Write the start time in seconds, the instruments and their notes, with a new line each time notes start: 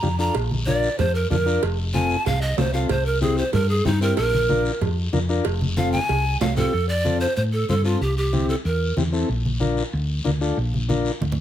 Already playing: pan flute A#5
0.02 fingered electric bass F2, transistor combo organ D4 F4 G4, high conga, short guiro
0.18 transistor combo organ D4 F4 A4, pan flute A#5, short guiro
0.35 fingered electric bass A#1, cowbell, long guiro
0.51 high conga
0.66 transistor combo organ D4 F4 A#4, pan flute D5, high conga, short guiro
0.83 short guiro
0.98 fingered electric bass F2, pan flute C5, cowbell, low conga, long guiro
1.15 pan flute A#4
1.30 fingered electric bass F2, transistor combo organ D4 F4 A4, pan flute A#4, high conga, low conga, short guiro
1.46 transistor combo organ D4 F4 A#4, short guiro
1.63 fingered electric bass F1, cowbell, long guiro
1.94 transistor combo organ C4 F4 A4, pan flute G#5, high conga, short guiro
2.10 short guiro
2.26 fingered electric bass C2, pan flute F5, cowbell, low conga, long guiro
2.42 pan flute D#5
2.57 fingered electric bass C2, transistor combo organ C4 F4 A4, pan flute C5, high conga, low timbale, short guiro
2.73 transistor combo organ C4 F4 A4, pan flute F5, short guiro
2.89 fingered electric bass C2, pan flute C5, cowbell, low conga, long guiro
3.06 pan flute A#4
3.21 transistor combo organ C4 E4 G4, pan flute G#4, high conga, short guiro
3.37 pan flute C5, short guiro
3.53 fingered electric bass G2, pan flute A#4, cowbell, low conga, long guiro
3.69 pan flute G#4
3.85 fingered electric bass G2, transistor combo organ C4 E4 G4, pan flute D#4, high conga, low conga, short guiro
4.01 transistor combo organ C4 E4 G4, pan flute A#4, short guiro
4.17 fingered electric bass A#1, pan flute A#4, cowbell, long guiro
4.33 high conga
4.49 transistor combo organ D4 F4 A#4, high conga, short guiro
4.65 short guiro
4.81 fingered electric bass F2, cowbell, low conga, long guiro
5.13 fingered electric bass F2, transistor combo organ D4 F4 A#4, high conga, short guiro
5.29 transistor combo organ D4 F4 A#4, short guiro
5.44 fingered electric bass F1, cowbell, long guiro
5.61 high conga
5.76 transistor combo organ C4 F4 A4, pan flute F5, high conga, short guiro
5.92 pan flute G#5, high conga, short guiro
6.09 fingered electric bass C2, cowbell, long guiro
6.41 fingered electric bass C2, transistor combo organ C4 F4 A4, pan flute F5, low conga, low timbale, short guiro
6.56 transistor combo organ C4 F4 G4, pan flute A4, low conga, short guiro
6.73 fingered electric bass F2, long guiro
6.89 pan flute D5
7.04 transistor combo organ C4 F4 A4, high conga, short guiro
7.20 pan flute C5, short guiro
7.36 fingered electric bass A2, pan flute C5, long guiro
7.53 pan flute A4
7.69 fingered electric bass G2, transistor combo organ C4 F4 C5, pan flute A4, high conga, short guiro
7.85 transistor combo organ C4 F4 A4, pan flute F4, short guiro
8.01 fingered electric bass C2, pan flute G4, long guiro
8.17 pan flute G4
8.33 transistor combo organ C4 E4 G4, high conga, short guiro
8.49 pan flute A4, short guiro
8.65 fingered electric bass E2, pan flute A#4, long guiro
8.97 fingered electric bass E2, transistor combo organ C4 E4 G4, high conga, short guiro
9.12 transistor combo organ C4 E4 A4, short guiro
9.29 fingered electric bass A#1, long guiro
9.45 high conga
9.60 transistor combo organ D4 F4 A#4, high conga, short guiro
9.77 short guiro
9.93 fingered electric bass D2, long guiro
10.24 fingered electric bass D2, transistor combo organ D4 F4 A#4, high conga, short guiro
10.41 transistor combo organ D4 F4 A4, short guiro
10.57 fingered electric bass A#1, long guiro
10.74 high conga
10.89 transistor combo organ D4 F4 A#4, high conga, short guiro
11.05 short guiro
11.20 fingered electric bass D2, low conga, long guiro
11.32 low conga